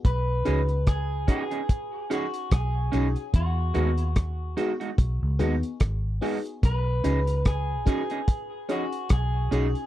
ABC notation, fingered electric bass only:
X:1
M:4/4
L:1/16
Q:"Swing 16ths" 1/4=73
K:B
V:1 name="Fingered electric bass" clef=bass
B,,,2 C,,4 z6 B,,,2 B,,, z | E,,2 D,,4 z2 B,,, C,, D,, z G,,,2 z2 | B,,,2 C,,4 z6 B,,,2 B,,, z |]